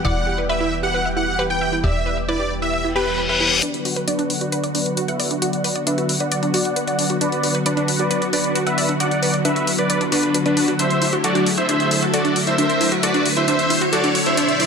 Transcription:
Already playing: E3 G3 B3 G4
0.05 E1 E4 D5 F#5
0.27 G4
0.38 B4
0.49 B4 E5
0.61 E4
0.83 G4 F#5
0.94 B4
1.05 E5
1.17 E4 F#5
1.39 G4 B4
1.50 G5
1.61 E5
1.72 E4
1.84 E1 G4 D5 E5
2.06 B4
2.17 E5
2.28 E4 B4 D5
2.40 G4
2.62 B4 E5
2.73 E5, reverse cymbal
2.85 E4
2.96 G4 B4
3.18 B4
3.29 B4 E5
3.40 E4
3.52 G4
3.63 D3 F#3 B3 D4 F#4 B4 D5, closed hi-hat, riser
3.74 closed hi-hat
3.85 F#4, open hi-hat
3.96 B4, closed hi-hat
4.07 D4 B4 D5, closed hi-hat
4.19 D4, closed hi-hat
4.30 open hi-hat
4.41 F#4 B4 D5, closed hi-hat
4.52 B4, closed hi-hat
4.64 D5, closed hi-hat
4.75 D4 B4 D5, open hi-hat
4.86 closed hi-hat
4.97 F#4, closed hi-hat
5.08 B4 E5 F#5, closed hi-hat
5.20 D5, open hi-hat
5.31 D4, closed hi-hat
5.42 F#4 D5 F#5, closed hi-hat
5.53 closed hi-hat
5.64 B4, open hi-hat
5.76 D5, closed hi-hat
5.87 D4 B4 E5, closed hi-hat
5.98 F#4, closed hi-hat
6.09 open hi-hat
6.20 B4 D5 F#5, closed hi-hat
6.32 D5, closed hi-hat
6.43 D4, closed hi-hat
6.54 F#4 D5 F#5, open hi-hat
6.65 closed hi-hat
6.76 B4, closed hi-hat
6.87 D5 F#5, closed hi-hat
6.99 D4, open hi-hat
7.10 F#4, closed hi-hat
7.21 D4 B4 D5, closed hi-hat
7.32 closed hi-hat
7.43 F#4, open hi-hat
7.55 B4, closed hi-hat
7.66 D4 B4 D5, closed hi-hat
7.77 D4, closed hi-hat
7.88 open hi-hat
7.99 F#4 B4 D5, closed hi-hat
8.11 B4, closed hi-hat
8.22 D5, closed hi-hat
8.33 D4 B4 D5, open hi-hat
8.44 closed hi-hat
8.55 F#4, closed hi-hat
8.67 B4 E5 F#5, closed hi-hat
8.78 D5, open hi-hat
8.89 D4, closed hi-hat
9.00 F#4 D5 F#5, closed hi-hat
9.11 closed hi-hat
9.22 B4, open hi-hat
9.34 D5, closed hi-hat
9.45 D4 B4 E5, closed hi-hat
9.56 F#4, closed hi-hat
9.67 open hi-hat
9.78 B4 D5, closed hi-hat
9.90 D5, closed hi-hat
10.01 D4, closed hi-hat
10.12 D4 F#4 B4, open hi-hat
10.23 closed hi-hat
10.34 B4, closed hi-hat
10.46 D4 B4 D5, closed hi-hat
10.57 D4, open hi-hat
10.68 F#4, closed hi-hat
10.79 A3 D4 E4 C5 E5, closed hi-hat
10.90 closed hi-hat
11.02 E4, open hi-hat
11.13 F#4, closed hi-hat
11.24 F#4 A4 D5, closed hi-hat
11.35 D4, closed hi-hat
11.46 open hi-hat
11.57 E4 C5 E5, closed hi-hat
11.69 D4 C5 E5, closed hi-hat
11.80 closed hi-hat
11.91 E4, open hi-hat
12.02 F#4, closed hi-hat
12.14 F#4 A4 D5, closed hi-hat
12.25 D4, closed hi-hat
12.36 open hi-hat
12.47 E4 C5 E5, closed hi-hat
12.58 D4 C5 E5, closed hi-hat
12.70 closed hi-hat
12.81 E4, open hi-hat
12.92 F#4, closed hi-hat
13.03 F#4 A4 D5, closed hi-hat
13.14 D4, closed hi-hat
13.26 open hi-hat
13.37 E4 C5 E5, closed hi-hat
13.48 D4 C5 E5, closed hi-hat
13.59 closed hi-hat
13.70 E4, open hi-hat
13.81 F#4, closed hi-hat
13.93 F#4 A4 D5, closed hi-hat
14.04 D4, closed hi-hat
14.15 open hi-hat
14.26 E4 C5 E5, closed hi-hat
14.37 B2 D4 C5 E5, closed hi-hat
14.49 closed hi-hat
14.60 E4, open hi-hat

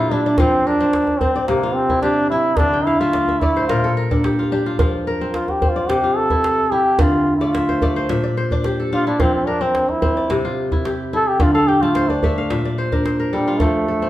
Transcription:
Already playing: A#2 D4 E4 G4 A4 A#4 C5
0.00 F4
0.11 D4 E4, djembe slap
0.26 D4
0.38 F3 C4 F4, djembe slap, djembe tone, djembe bass
0.65 D4 A#4, djembe slap
0.81 C4
0.93 djembe slap
1.07 djembe slap, djembe tone
1.20 C4, djembe bass
1.36 D5
1.47 C3 A#3, djembe slap
1.63 F4
1.74 C4
1.89 E4, djembe bass
2.02 D4 G4, djembe slap
2.30 E4, djembe slap
2.57 D3 D4, djembe slap, djembe tone, djembe bass
2.73 G5
2.85 E4 F5
3.00 A3 F4 E5, djembe slap
3.13 D5, djembe slap
3.28 E5, djembe tone
3.40 A3 E4 D5, djembe slap, djembe bass
3.57 C5
3.68 A#2 F4 A#4, djembe slap
3.84 A4, djembe slap
3.97 A#4
4.11 D4 A4, djembe tone, djembe bass
4.24 G4, djembe slap
4.39 F4, djembe slap
4.52 D4 G4, djembe slap
4.66 F4, djembe slap
4.79 F3 F4, djembe slap, djembe tone, djembe bass
5.06 A#4, djembe slap
5.21 C4
5.33 F4, djembe slap
5.48 G4, djembe slap, djembe tone
5.62 C4, djembe bass
5.69 F4
5.76 D5
5.89 C3 G4, djembe slap
6.04 F4
6.16 A4
6.30 E4, djembe tone, djembe bass
6.44 djembe slap
6.72 E4 G4, djembe slap
6.99 D3 F4, djembe slap, djembe tone, djembe bass
7.27 djembe slap
7.37 F4
7.41 A3 D5
7.55 E5, djembe slap
7.69 C5, djembe slap, djembe tone
7.82 A3 D5, djembe bass
7.96 C5
8.09 A#2 E5, djembe slap
8.24 D5
8.37 C5
8.51 D4 D5, djembe tone, djembe bass
8.64 G4, djembe slap
8.80 A4
8.92 D4 F4, djembe slap
9.07 D4 E4
9.20 F3 C4 F4, djembe slap, djembe tone, djembe bass
9.35 C4
9.47 D4 A#4
9.61 C4
9.75 djembe slap
9.89 E4, djembe slap, djembe tone
10.02 C4, djembe bass
10.17 D5
10.30 C3, djembe slap
10.45 F4
10.72 E4, djembe tone, djembe bass
10.85 G4, djembe slap
11.13 E4 A4, djembe slap
11.28 G4
11.40 D3 F4, djembe slap, djembe tone, djembe bass
11.54 A4 F5
11.67 G4 G5
11.82 A3 F4 A5
11.95 C5, djembe slap
12.09 D4 D5, djembe slap, djembe tone
12.23 A3 E5, djembe bass
12.38 F5
12.50 A#2 E5, djembe slap
12.65 D5, djembe slap
12.78 C5
12.92 D4 A#4, djembe slap, djembe tone, djembe bass
13.05 C5, djembe slap
13.20 A#4
13.33 G3 D4 A4, djembe slap
13.47 F4
13.59 F3 A3 A4, djembe slap, djembe tone, djembe bass
13.87 A4, djembe slap
14.02 C4

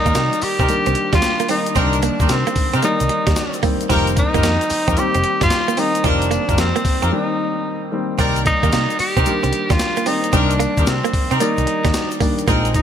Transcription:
Already playing: D#3 G3 A#3 D#4 D5
0.06 D#2 A#3 C4 D#4 G4 A#4, kick, closed hi-hat, shaker
0.15 C3 A#3, snare, closed hi-hat, tambourine, shaker
0.33 closed hi-hat, shaker
0.41 G4, muted clean electric guitar stroke, muted picked electric bass stroke, open hi-hat, tambourine
0.59 C3 C4 D#4 G4 A#4, kick, closed hi-hat, shaker
0.68 D#3 G3 A#3 D4, closed hi-hat, tambourine, shaker
0.86 C2 C4, closed hi-hat, shaker
0.95 muted clean electric guitar stroke, closed hi-hat
1.13 D#2 G3 F4, kick, snare, closed hi-hat, shaker
1.22 muted clean electric guitar stroke, snare, closed hi-hat, tambourine, shaker
1.40 A#3, closed hi-hat, shaker
1.48 D#3 G3 A#3 C4 D#4, open hi-hat, tambourine
1.66 closed hi-hat, shaker
1.75 C2 D3 G3 A#3 C4 D4 D#4 G4 A#4, kick, closed hi-hat, tambourine, shaker
1.82 D#3
1.93 closed hi-hat, shaker
2.02 A#3, closed hi-hat, tambourine, shaker
2.20 D#2 C4 D#4 G4 A#4, muted clean electric guitar stroke, kick, closed hi-hat, shaker
2.29 C3 C4, snare, closed hi-hat, tambourine, shaker
2.47 A#3, closed hi-hat, shaker
2.56 muted clean electric guitar stroke, muted picked electric bass stroke, kick, open hi-hat, tambourine
2.73 C3 C4 D#4 G4 A#4, closed hi-hat, shaker
2.82 D#3 G3 A#3 D#4 D5, closed hi-hat, tambourine, shaker
3.00 C2, closed hi-hat, shaker
3.09 muted clean electric guitar stroke, closed hi-hat
3.27 D#2 G3, kick, snare, closed hi-hat, shaker
3.36 snare, closed hi-hat, tambourine, shaker
3.54 closed hi-hat, shaker
3.63 D#3 G3 A#3 C4, kick, open hi-hat, tambourine
3.81 closed hi-hat, shaker
3.90 F1 D#3 G3 A#3 C4 D#4 F4 G4 A#4, kick, closed hi-hat, tambourine, shaker
4.07 closed hi-hat, shaker
4.16 D#4, muted clean electric guitar stroke, kick, closed hi-hat, tambourine, shaker
4.34 G1 A#3 D#4 F4 G4 A#4, kick, closed hi-hat, shaker
4.43 F2 A#3, snare, closed hi-hat, tambourine, shaker
4.61 closed hi-hat, shaker
4.70 muted clean electric guitar stroke, muted picked electric bass stroke, open hi-hat, tambourine
4.88 F2 C4 D#4 F4 G4 A#4, kick, closed hi-hat, shaker
4.97 D#3 G3 A#3 C4 G4, closed hi-hat, tambourine, shaker
5.14 F1 C4, closed hi-hat, shaker
5.24 muted clean electric guitar stroke, closed hi-hat
5.41 G1 G3 F4, kick, snare, closed hi-hat, shaker
5.50 muted clean electric guitar stroke, snare, closed hi-hat, tambourine, shaker
5.68 A#3, closed hi-hat, shaker
5.77 D#3 G3 A#3 C4 D#4, open hi-hat, tambourine
5.95 closed hi-hat, shaker
6.04 F1 D#3 G3 A#3 C4 D4 D#4 F4 G4 A#4, kick, closed hi-hat, tambourine, shaker
6.22 closed hi-hat, shaker
6.31 A#3, closed hi-hat, tambourine, shaker
6.49 G1 D#4 F4 G4 A#4, muted clean electric guitar stroke, kick, closed hi-hat, shaker
6.58 F2 C4, snare, closed hi-hat, tambourine, shaker
6.76 A#3, closed hi-hat, shaker
6.85 muted clean electric guitar stroke, muted picked electric bass stroke, kick, open hi-hat, tambourine
7.02 F2 C4 D#4 F4 G4 A#4, closed hi-hat, shaker
7.11 D#3 G3 A#3 C4 D#4
7.92 D#3 G3 A#3 C4
8.19 C2 D#3 G3 A#3 C4 D#4 G4 A#4 D5, kick, closed hi-hat, tambourine, shaker
8.36 closed hi-hat, shaker
8.45 D#4, muted clean electric guitar stroke, kick, closed hi-hat, tambourine, shaker
8.63 D#2 A#3 C4 D#4 G4 A#4, kick, closed hi-hat, shaker
8.72 C3 A#3, snare, closed hi-hat, tambourine, shaker
8.90 closed hi-hat, shaker
8.99 G4, muted clean electric guitar stroke, muted picked electric bass stroke, open hi-hat, tambourine
9.16 C3 C4 D#4 G4 A#4, kick, closed hi-hat, shaker
9.26 D#3 G3 A#3 D4, closed hi-hat, tambourine, shaker
9.43 C2 C4, closed hi-hat, shaker
9.52 muted clean electric guitar stroke, closed hi-hat
9.70 D#2 G3 F4, kick, snare, closed hi-hat, shaker
9.79 muted clean electric guitar stroke, snare, closed hi-hat, tambourine, shaker
9.96 A#3, closed hi-hat, shaker
10.06 D#3 G3 A#3 C4 D#4, open hi-hat, tambourine
10.24 closed hi-hat, shaker
10.33 C2 D#3 G3 A#3 C4 D4 D#4 G4 A#4, kick, closed hi-hat, tambourine, shaker
10.51 closed hi-hat, shaker
10.60 A#3, closed hi-hat, tambourine, shaker
10.77 D#2 C4 D#4 G4 A#4, muted clean electric guitar stroke, kick, closed hi-hat, shaker
10.87 C3 C4, snare, closed hi-hat, tambourine, shaker
11.04 A#3, closed hi-hat, shaker
11.13 muted picked electric bass stroke, muted clean electric guitar stroke, kick, open hi-hat, tambourine
11.31 C3 C4 D#4 G4 A#4, closed hi-hat, shaker
11.40 D#3 G3 A#3 D#4 D5, closed hi-hat, tambourine, shaker
11.58 C2, closed hi-hat, shaker
11.67 muted clean electric guitar stroke, closed hi-hat
11.85 D#2 G3, kick, snare, closed hi-hat, shaker
11.94 snare, closed hi-hat, tambourine, shaker
12.11 closed hi-hat, shaker
12.20 D#3 G3 A#3 D4, kick, open hi-hat, tambourine
12.38 closed hi-hat, shaker
12.47 A#1 F3 G#3 A#3 C4 D#4 G#4 A#4, kick, closed hi-hat, tambourine, shaker
12.65 closed hi-hat, shaker
12.74 D#4, muted clean electric guitar stroke, kick, closed hi-hat, tambourine, shaker

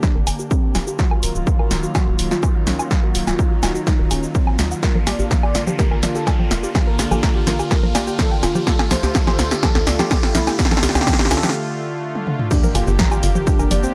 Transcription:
Already playing: D3 A#3 D4 G4, riser
0.03 D4 G4, kick, snare, shaker
0.15 G1 A#4
0.27 G1 A#3 D5, open hi-hat, low woodblock, shaker
0.39 G4, shaker
0.51 C4 A4, kick, shaker
0.63 G5
0.75 F1 F4, snare, open hi-hat, low woodblock, shaker
0.87 G4, shaker
0.99 D#3 F#3 F4 F#4, kick, snare, shaker
1.11 A#4, low woodblock
1.23 D#1 F#4 A#4, open hi-hat, shaker
1.35 D#1 D#3 F#3 F4 F#4, shaker
1.47 A#5, kick, shaker
1.59 F#4 A#4, low woodblock
1.71 D#1 F4, snare, open hi-hat, shaker
1.83 F#4, shaker
1.95 F#4, kick, snare, low woodblock, shaker
2.07 D#1 A#4
2.19 D#1 D#3 F#3 F4 C#5, open hi-hat, shaker
2.31 F4 F#4, snare, shaker
2.43 G#4, kick, low woodblock, shaker
2.55 F#5
2.67 C#2 C#4 F4, snare, open hi-hat, shaker
2.79 F#4, low woodblock, shaker
2.91 D#3 F#3 D#4 F4 F#4, kick, snare, shaker
3.03 F#4 A#4
3.15 D#1 F#4, open hi-hat, shaker
3.27 D#1 D#3 F#3 F4 F#4, snare, low woodblock, shaker
3.39 A#5, kick, shaker
3.51 F#4
3.63 D#1 F4 F#4, snare, open hi-hat, low woodblock, shaker
3.75 F#4, shaker
3.87 D#4 F#4, kick, snare, shaker
3.99 D#1 A#4
4.11 D#1 C#4 G#4, open hi-hat, low woodblock, shaker
4.23 A#4, shaker
4.35 C4 C#5, kick, shaker
4.47 A#5, low woodblock
4.59 D#2 F#4, snare, open hi-hat, shaker
4.71 F#5, shaker
4.83 D3 A#3 D4 F4 G4 A#4, kick, snare, shaker
4.95 A#4, low conga
5.07 A#1 G4 D5, snare, open hi-hat, low woodblock, shaker
5.19 A#1 D3 A#3 F4 G4, shaker
5.31 A#5, kick, snare, low conga, shaker
5.43 G4 D5, low woodblock
5.55 A#1 F4, snare, open hi-hat, shaker
5.67 G4, low conga, shaker
5.79 G4 A#4, kick, snare, shaker
5.91 A#1 A#4, low woodblock
6.03 A#1 D3 A#3 F4 D5, snare, open hi-hat, low conga, shaker
6.15 G4 A4, shaker
6.27 kick, snare, low woodblock, shaker
6.39 G5, low conga
6.51 F1 F4, snare, open hi-hat, shaker
6.63 G4, shaker
6.75 D3 A#3 F4, kick, snare, low conga, low woodblock, shaker
6.87 A#4
6.99 A#1 G4, snare, open hi-hat, shaker
7.11 A#1 D3 A#3 F4 G4 A4, low conga, low woodblock, shaker
7.23 A#5, kick, snare, shaker
7.35 G4
7.47 A#1 F4 A#4, snare, open hi-hat, low conga, shaker
7.59 G4, low woodblock, shaker
7.71 G4 A#4, kick, snare, shaker
7.83 A#1 A#4, low conga
7.95 A#1 G4 D5, snare, open hi-hat, low woodblock, shaker
8.07 G4, shaker
8.19 A4, kick, snare, low conga, shaker
8.31 G5
8.43 F1 F4, snare, open hi-hat, low woodblock, shaker
8.55 G4, low conga, shaker
8.67 D3 A3 F4 G4 A4, kick, snare, shaker
8.79 A4, snare, low woodblock
8.91 D2 G4 C5, snare, open hi-hat, low conga, shaker
9.03 D2 D3 A3 F4 G4, snare, shaker
9.15 A5, kick, snare, shaker
9.27 G4 C5, snare, low conga, low woodblock
9.39 D2 F4, snare, open hi-hat, shaker
9.51 G4, snare, shaker
9.63 G4 A4, kick, snare, low conga, low woodblock, shaker
9.75 D2 A4, snare
9.87 D2 D3 A3 F4 D5, snare, open hi-hat, shaker
9.99 G4, snare, low conga, shaker
10.11 A4, kick, snare, low woodblock, shaker
10.23 G5, snare
10.35 C2 E4 F4, snare, open hi-hat, low conga, shaker
10.47 G4, snare, low woodblock, shaker
10.59 D3 A3 F4 G4, kick, snare, shaker
10.65 snare
10.71 A4, snare, low conga
10.77 snare
10.83 D2 G4, snare, open hi-hat, shaker
10.89 snare
10.95 D2 D3 A3 F4 G4, snare, low woodblock, shaker
11.01 snare
11.07 A5, kick, snare, low conga, shaker
11.13 snare
11.19 G4, snare
11.25 snare
11.31 D2 F4 A4, snare, open hi-hat, low woodblock, shaker
11.37 snare
11.43 G4, snare, low conga, shaker
11.49 snare
12.15 high tom
12.27 mid tom
12.39 mid tom
12.51 D3 A#3 D4 G4, kick, crash, ride, impact, shaker
12.63 A#4, low conga, shaker
12.75 G1 F4 G4, open hi-hat, ride, low woodblock, shaker
12.87 G1 D3 A#3 G4, snare, shaker
12.99 A#5, kick, snare, ride, low conga, shaker
13.11 F4 G4, low woodblock, shaker
13.23 G1 F4, open hi-hat, ride, shaker
13.35 G4, low conga, shaker
13.47 D4 G4, kick, ride, shaker
13.59 G1 A#4, low woodblock, shaker
13.71 G1 D3 A#3 G4 D5, open hi-hat, ride, low conga, shaker
13.83 C4 G4, shaker

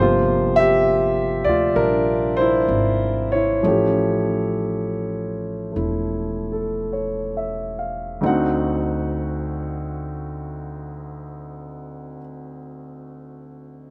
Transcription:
Already playing: G1 C3 F3 A#3
0.00 F4 G4 C5
0.56 G4 E5
1.44 D2 D5
1.49 F4
1.74 A#1 G3 D4 A#4
1.81 D4
2.37 E4 C5
2.68 G#1
3.32 E4 C#5
3.63 A1 F3 A3 C#4
3.68 G4
5.72 E1 A3 E4
6.52 A4
6.93 C#5
7.37 E5
7.79 F5
8.21 D2 D3 C4 D#4 F#4
8.26 F#5

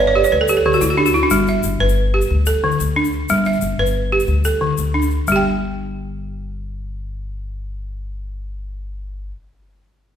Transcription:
Already playing: G1
0.00 B4
0.07 C#5
0.15 G4 D5
0.24 C#5, shaker
0.32 D2 B4
0.41 A4
0.48 G4, shaker
0.57 A4
0.66 D3 G4
0.73 F#4, shaker
0.81 D2 E4, shaker
0.90 F#4
0.97 D4 G4
1.06 F#4, shaker
1.14 E4, shaker
1.23 D4
1.30 G1 G3, shaker
1.47 E5, shaker
1.63 G1, shaker
1.80 G1 B4
1.89 shaker
2.14 G4
2.21 shaker
2.30 D2
2.46 A4, shaker
2.64 D3
2.72 shaker
2.80 D2, shaker
2.96 D4
3.05 shaker
3.12 shaker
3.29 G1 G3, shaker
3.45 E5, shaker
3.53 shaker
3.61 G1, shaker
3.79 G1 B4
3.86 shaker
4.12 G4
4.20 shaker
4.27 D2, shaker
4.44 A4, shaker
4.61 D3
4.78 D2, shaker
4.94 D4
5.02 shaker
5.11 shaker
5.27 G1 G3, shaker
5.32 G4
5.36 G5

